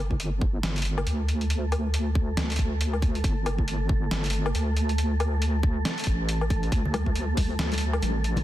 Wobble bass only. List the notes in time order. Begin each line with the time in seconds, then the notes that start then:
Already playing: G1
0.63 G1
1.07 D2
2.37 D2
3.24 G1
4.11 G1
4.55 D2
6.07 A1
6.72 D2
7.59 D2
8.02 A1